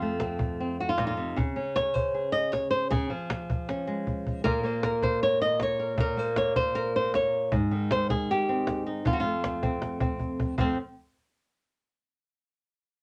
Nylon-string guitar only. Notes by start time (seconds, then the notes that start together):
Already playing: F2 F4 A4
0.02 A3
0.22 C4
0.60 C4
0.80 F#4
0.89 F4
0.98 A#2 D#4
1.07 F4
1.17 C3
1.36 C#3
1.56 C#4
1.76 C#5
1.94 C5
2.14 G#4
2.32 D#5
2.52 C#5
2.71 C5
2.90 C#3 G#4
3.10 F3
3.69 C#4
3.87 G#3
4.44 A#2 A#3 F4 A#4
4.63 A#3 C5
4.83 A#4
5.03 C5
5.23 C#5
5.42 D#5
5.62 C#5
5.80 A#4
5.98 A#2 A#4
6.17 A#3 C5
6.37 C#5
6.56 C5
6.75 A#4
6.96 C5
7.15 C#5
7.52 G#2
7.71 D#3
7.92 C5
8.10 G#4
8.31 G4
8.49 C4
8.87 D#4
9.05 F2 F4
9.13 F#4
9.20 A3 F4
9.63 C4
10.01 C4
10.58 F2 F3 A3 C4